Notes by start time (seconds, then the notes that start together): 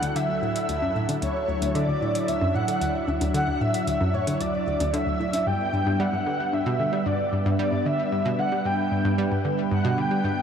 Already playing: F#3 D4 E4 A4 F#5
0.02 D2, closed hi-hat
0.16 D3 E5, closed hi-hat
0.29 D2
0.42 A2
0.56 closed hi-hat
0.69 D2 E5, closed hi-hat
0.82 F#2
0.96 A2
1.09 D3, closed hi-hat, low bongo
1.22 D2 C#5 E5, closed hi-hat
1.48 D2
1.62 D2, closed hi-hat
1.75 D3 D5, closed hi-hat
1.88 D2
2.02 A2
2.15 closed hi-hat
2.28 D2 E5, closed hi-hat
2.41 F#2
2.54 A2 F#5
2.68 D3, closed hi-hat
2.81 D2, closed hi-hat
3.08 D2, low bongo
3.21 D2, closed hi-hat, low bongo
3.34 D3 F#5, closed hi-hat
3.48 D2
3.61 A2 E5
3.74 closed hi-hat
3.87 D2, closed hi-hat
4.01 F#2
4.14 A2 C#5
4.27 D3, closed hi-hat
4.40 D2 D5, closed hi-hat
4.67 D2
4.80 D2, closed hi-hat, low bongo
4.94 D3 E5, closed hi-hat
5.07 D2
5.20 A2
5.33 closed hi-hat, low bongo
5.47 G2 G3 B3 D4 B4 G5
5.73 G2
5.87 G2
6.00 G3 F#5
6.13 G2
6.26 D3
6.53 G2 E5
6.66 B2
6.79 D3
6.93 G3
7.06 G2 D5
7.33 G2
7.46 G2
7.59 G3 D5
7.72 G2
7.86 D3 E5
8.12 G2
8.25 B2
8.39 D3 F#5
8.52 G3
8.65 G2 G5
8.92 G2
9.05 G2
9.18 G3
9.32 G2
9.45 D3
9.71 G2 F#5
9.85 B2
9.98 D3 G5
10.11 G3
10.24 G2